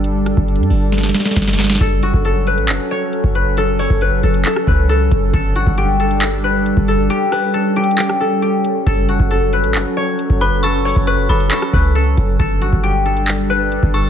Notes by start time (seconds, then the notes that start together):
Already playing: G1 G3 D4 A4
0.04 closed hi-hat
0.26 cross-stick, closed hi-hat
0.37 G1, kick
0.48 closed hi-hat
0.56 G2, closed hi-hat
0.63 closed hi-hat
0.70 G1, open hi-hat
0.92 snare, closed hi-hat
0.98 snare
1.03 snare
1.09 snare
1.14 snare, closed hi-hat
1.20 snare, closed hi-hat
1.25 snare, closed hi-hat
1.31 snare, closed hi-hat
1.36 G1, kick, snare, closed hi-hat
1.42 snare
1.48 snare
1.53 snare
1.59 snare
1.64 snare
1.70 snare
1.75 snare
1.81 F#1 F#3 C#4 A4, kick, closed hi-hat
2.03 F#4, closed hi-hat
2.14 F#1, kick
2.25 A4, closed hi-hat
2.47 B4, closed hi-hat
2.58 A1, closed hi-hat
2.69 F#1, clap, closed hi-hat
2.91 C#5
3.13 closed hi-hat
3.24 F#1, kick
3.35 B4, closed hi-hat
3.57 A4, closed hi-hat
3.79 C#5, open hi-hat
3.90 F#1, kick
4.01 B4, closed hi-hat
4.23 F#1 A4, closed hi-hat
4.34 closed hi-hat
4.45 A4, clap, closed hi-hat
4.56 cross-stick
4.67 C#2 B4, kick
4.89 A4, closed hi-hat
5.11 F#1, kick, closed hi-hat
5.33 G1 G3 D4 A4, kick, closed hi-hat
5.56 F#4, closed hi-hat
5.67 G1, kick
5.78 G4, closed hi-hat
6.00 A4, closed hi-hat
6.11 closed hi-hat
6.22 clap, closed hi-hat
6.44 B4
6.66 closed hi-hat
6.77 G1, kick
6.88 A4, closed hi-hat
7.10 C#4 G4, closed hi-hat
7.32 B4, cross-stick, open hi-hat
7.54 A4, closed hi-hat
7.76 G4, closed hi-hat
7.84 closed hi-hat
7.91 closed hi-hat
7.98 G4, clap, closed hi-hat
8.09 cross-stick
8.20 A4
8.42 G4, closed hi-hat
8.65 closed hi-hat
8.87 F#1 F#3 A4, kick, closed hi-hat
9.09 F#4, closed hi-hat
9.20 F#1, kick
9.31 A4, closed hi-hat
9.53 B4, closed hi-hat
9.64 A1, closed hi-hat
9.75 F#1, clap, closed hi-hat
9.97 C#5
10.19 closed hi-hat
10.30 F#1, kick
10.41 B4 B5, closed hi-hat
10.63 A4 C#6, closed hi-hat
10.85 C#5, open hi-hat
10.96 F#1, kick
11.07 B4 C#6, closed hi-hat
11.29 F#1 A4 B5, closed hi-hat
11.40 closed hi-hat
11.51 A4 C#6, clap, closed hi-hat
11.62 cross-stick
11.73 C#2 B4, kick
11.95 A4, closed hi-hat
12.17 F#1, kick, closed hi-hat
12.39 G1 G3 D4 A4, kick, closed hi-hat
12.62 F#4, closed hi-hat
12.73 G1, kick
12.83 G4, closed hi-hat
13.06 A4, closed hi-hat
13.17 closed hi-hat
13.28 clap, closed hi-hat
13.50 B4
13.72 closed hi-hat
13.83 G1, kick
13.94 A4 C#6, closed hi-hat